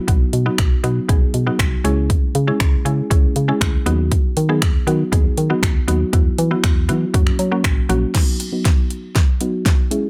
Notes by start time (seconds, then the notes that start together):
0.08 B1 F#3 B3 D#4 F#4, kick, closed hi-hat
0.33 B2, closed hi-hat
0.46 F#3 B3 D#4 F#4
0.58 B1, finger snap, kick, closed hi-hat
0.84 B2 F#3 B3 D#4 F#4, closed hi-hat
1.09 B1 F#3 B3 D#4 G#4, kick, closed hi-hat
1.34 B2, closed hi-hat
1.47 F#3 B3 D#4 F#4
1.59 C2, finger snap, kick, closed hi-hat
1.84 C#2 G#3 C#4 E4 G#4, closed hi-hat
2.10 kick, closed hi-hat
2.35 C#3, closed hi-hat
2.47 G#3 C#4 E4 G#4
2.60 C#2, finger snap, kick, closed hi-hat
2.85 C#3 G#3 C#4 E4 G#4, closed hi-hat
3.10 C#2 G#3 C#4 E4 G#4, kick, closed hi-hat
3.36 C#3, closed hi-hat
3.48 G#3 C#4 E4 G#4
3.61 D2, finger snap, kick, closed hi-hat
3.86 D#2 F#3 B3 D#4 F#4, closed hi-hat
4.12 kick, closed hi-hat
4.37 D#3, closed hi-hat
4.49 F#3 B3 D#4 G#4
4.62 D#2, finger snap, kick, closed hi-hat
4.87 D#3 F#3 B3 D#4 F#4, closed hi-hat
5.12 D#2 F#3 B3 D#4 G#4, kick, closed hi-hat
5.37 D#3, closed hi-hat
5.50 F#3 B3 D#4 F#4
5.63 D2, finger snap, kick, closed hi-hat
5.88 D#2 F#3 B3 D#4 F#4, closed hi-hat
6.13 E2 F#3 B3 E4 F#4, kick, closed hi-hat
6.38 E3, closed hi-hat
6.51 F#3 B3 E4 F#4
6.64 E2, finger snap, kick, closed hi-hat
6.89 E3 F#3 B3 E4 F#4, closed hi-hat
7.14 F#2 F#3 A#3 C#4 F#4, kick, closed hi-hat
7.27 finger snap
7.39 F#3, closed hi-hat
7.51 F#3 A#3 C#4 F#4
7.64 A1, finger snap, kick, closed hi-hat
7.89 A#1 F#3 A#3 C#4 F#4, closed hi-hat
8.14 F#3 B3 D#4 F#4, kick, snare, closed hi-hat, crash
8.40 closed hi-hat
8.52 F#3 B3 D#4 F#4
8.65 kick, snare, closed hi-hat
8.90 closed hi-hat
9.15 kick, snare, closed hi-hat
9.41 F#3 B3 D#4 F#4, closed hi-hat
9.66 kick, snare, closed hi-hat
9.91 G#3 C#4 E4 G#4, closed hi-hat